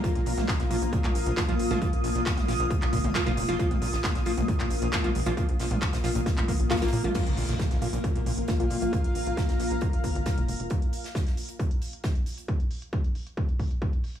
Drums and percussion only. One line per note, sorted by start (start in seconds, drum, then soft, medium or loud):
0.04 kick loud
0.04 closed hi-hat loud
0.04 closed hi-hat medium
0.15 closed hi-hat medium
0.26 closed hi-hat medium
0.26 open hi-hat loud
0.38 snare medium
0.38 closed hi-hat medium
0.38 mid tom loud
0.48 kick loud
0.48 snare loud
0.48 clap loud
0.48 closed hi-hat medium
0.59 snare soft
0.59 closed hi-hat medium
0.71 closed hi-hat medium
0.71 open hi-hat loud
0.82 closed hi-hat medium
0.82 closed hi-hat soft
0.93 kick loud
0.93 closed hi-hat medium
1.04 clap medium
1.04 closed hi-hat medium
1.04 mid tom loud
1.15 closed hi-hat medium
1.15 open hi-hat loud
1.26 closed hi-hat medium
1.37 kick loud
1.37 snare loud
1.37 clap loud
1.37 closed hi-hat medium
1.37 closed hi-hat loud
1.49 closed hi-hat medium
1.59 closed hi-hat medium
1.59 open hi-hat loud
1.71 closed hi-hat medium
1.71 closed hi-hat soft
1.71 mid tom loud
1.82 kick loud
1.82 closed hi-hat medium
1.93 closed hi-hat medium
2.04 closed hi-hat medium
2.04 open hi-hat loud
2.15 closed hi-hat medium
2.26 kick loud
2.26 snare loud
2.26 clap loud
2.26 closed hi-hat medium
2.26 closed hi-hat loud
2.38 snare medium
2.38 closed hi-hat medium
2.38 mid tom loud
2.48 snare medium
2.48 closed hi-hat medium
2.48 open hi-hat loud
2.60 closed hi-hat medium
2.70 kick loud
2.70 closed hi-hat medium
2.70 closed hi-hat loud
2.82 clap medium
2.82 closed hi-hat medium
2.93 kick medium
2.93 closed hi-hat medium
2.93 open hi-hat loud
3.04 closed hi-hat medium
3.04 mid tom loud
3.15 kick loud
3.15 snare loud
3.15 clap loud
3.15 closed hi-hat medium
3.27 closed hi-hat medium
3.37 closed hi-hat medium
3.37 open hi-hat loud
3.49 closed hi-hat medium
3.59 kick loud
3.59 closed hi-hat loud
3.59 closed hi-hat medium
3.71 closed hi-hat medium
3.71 mid tom medium
3.82 closed hi-hat medium
3.82 open hi-hat loud
3.93 snare medium
3.93 closed hi-hat medium
4.04 kick loud
4.04 snare loud
4.04 clap loud
4.04 closed hi-hat loud
4.04 closed hi-hat medium
4.15 snare soft
4.15 closed hi-hat medium
4.25 closed hi-hat medium
4.25 open hi-hat loud
4.38 closed hi-hat medium
4.38 closed hi-hat soft
4.38 mid tom medium
4.48 kick loud
4.48 closed hi-hat medium
4.60 clap medium
4.60 closed hi-hat medium
4.70 closed hi-hat medium
4.70 open hi-hat loud
4.82 closed hi-hat medium
4.93 kick loud
4.93 snare loud
4.93 clap loud
4.93 closed hi-hat medium
5.04 closed hi-hat medium
5.04 mid tom loud
5.15 closed hi-hat medium
5.15 open hi-hat loud
5.26 closed hi-hat soft
5.26 closed hi-hat medium
5.37 kick loud
5.37 closed hi-hat medium
5.49 closed hi-hat medium
5.59 snare loud
5.59 closed hi-hat medium
5.59 open hi-hat loud
5.71 closed hi-hat medium
5.71 mid tom medium
5.82 kick loud
5.82 clap loud
5.82 closed hi-hat medium
5.93 snare loud
5.93 closed hi-hat medium
6.04 snare loud
6.04 closed hi-hat medium
6.04 open hi-hat loud
6.15 closed hi-hat medium
6.26 kick loud
6.26 snare loud
6.26 closed hi-hat medium
6.38 clap medium
6.38 closed hi-hat medium
6.38 mid tom medium
6.48 kick medium
6.48 closed hi-hat medium
6.48 open hi-hat loud
6.60 closed hi-hat medium
6.69 kick loud
6.69 snare medium
6.69 clap loud
6.69 closed hi-hat medium
6.76 snare medium
6.76 closed hi-hat medium
6.82 snare medium
6.82 closed hi-hat medium
6.87 snare medium
6.87 closed hi-hat medium
6.93 closed hi-hat medium
6.93 open hi-hat loud
7.04 closed hi-hat medium
7.04 mid tom medium
7.15 kick loud
7.15 closed hi-hat medium
7.15 crash medium
7.27 closed hi-hat medium
7.37 closed hi-hat medium
7.37 open hi-hat loud
7.49 snare medium
7.49 closed hi-hat medium
7.59 kick loud
7.59 snare loud
7.59 closed hi-hat medium
7.71 snare soft
7.71 closed hi-hat medium
7.82 closed hi-hat medium
7.82 open hi-hat loud
7.93 closed hi-hat soft
7.93 closed hi-hat medium
8.04 kick loud
8.04 closed hi-hat medium
8.16 closed hi-hat medium
8.26 closed hi-hat medium
8.26 open hi-hat loud
8.38 closed hi-hat medium
8.48 kick loud
8.48 snare loud
8.48 closed hi-hat medium
8.60 closed hi-hat medium
8.70 closed hi-hat medium
8.70 open hi-hat loud
8.82 closed hi-hat soft
8.82 closed hi-hat medium
8.93 kick loud
8.93 closed hi-hat medium
9.04 closed hi-hat medium
9.15 closed hi-hat medium
9.15 open hi-hat loud
9.27 closed hi-hat medium
9.37 kick loud
9.37 snare loud
9.37 closed hi-hat medium
9.49 snare soft
9.49 closed hi-hat medium
9.59 snare soft
9.59 closed hi-hat medium
9.59 open hi-hat loud
9.71 closed hi-hat medium
9.81 kick loud
9.81 closed hi-hat medium
9.93 closed hi-hat medium
10.04 kick medium
10.04 closed hi-hat medium
10.04 open hi-hat loud
10.15 closed hi-hat medium
10.26 kick loud
10.26 snare loud
10.26 closed hi-hat medium
10.38 closed hi-hat medium
10.48 closed hi-hat medium
10.48 open hi-hat loud
10.60 closed hi-hat medium
10.70 kick loud
10.70 closed hi-hat medium
10.82 closed hi-hat medium
10.93 closed hi-hat medium
10.93 open hi-hat loud
11.04 snare soft
11.04 closed hi-hat medium
11.15 kick loud
11.15 snare loud
11.15 closed hi-hat medium
11.27 snare soft
11.27 closed hi-hat medium
11.37 closed hi-hat medium
11.37 open hi-hat loud
11.48 closed hi-hat soft
11.48 closed hi-hat medium
11.59 kick loud
11.59 closed hi-hat medium
11.71 closed hi-hat medium
11.82 closed hi-hat medium
11.82 open hi-hat loud
11.93 closed hi-hat medium
12.04 kick loud
12.04 snare loud
12.04 closed hi-hat medium
12.15 closed hi-hat medium
12.26 closed hi-hat medium
12.26 open hi-hat loud
12.38 closed hi-hat medium
12.38 closed hi-hat soft
12.48 kick loud
12.48 closed hi-hat medium
12.60 closed hi-hat medium
12.71 open hi-hat loud
12.82 closed hi-hat medium
12.93 kick loud
12.93 closed hi-hat medium
13.04 closed hi-hat medium
13.15 open hi-hat loud
13.27 closed hi-hat medium
13.37 kick loud
13.37 closed hi-hat medium
13.49 closed hi-hat medium
13.60 kick medium
13.60 open hi-hat loud
13.71 closed hi-hat medium
13.82 kick loud
13.82 closed hi-hat medium
13.93 closed hi-hat medium
14.04 open hi-hat loud
14.15 closed hi-hat medium